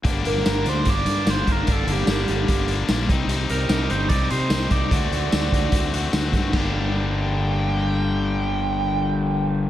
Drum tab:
CC |----------------|----------------|----------------|----------------|
HH |x-x-x-x-x-x-x-x-|x-x-x-x-x-x-x-x-|x-x-x-x-x-x-x-x-|x-x-x-x-x-x-x-x-|
TB |----x-------x---|----x-------x---|----x-------x---|----x-------x---|
SD |---oo-------o---|---oo-------o---|----o-------o---|----o-------o---|
BD |o-------o-----o-|o-------o-----o-|--------o-----o-|o-----o-o-----o-|

CC |x---------------|----------------|
HH |----------------|----------------|
TB |----------------|----------------|
SD |o---------------|----------------|
BD |o---------------|----------------|